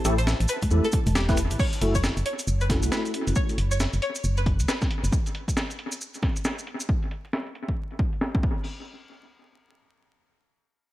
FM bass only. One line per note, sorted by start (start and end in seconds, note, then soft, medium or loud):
0.05 0.34 A1 loud
0.40 0.47 A1 medium
0.71 0.81 E2 medium
1.06 1.52 E1 loud
1.51 1.57 A1 medium
1.81 2.11 F#1 loud
2.17 2.23 F#1 medium
2.47 2.85 F#1 loud
2.83 2.89 C#2 loud
3.27 3.33 F#1 loud
3.58 3.87 F#1 loud
3.94 4.00 F#1 medium
4.24 4.61 F#1 loud
4.60 4.66 C#2 loud
5.04 5.10 F#1 loud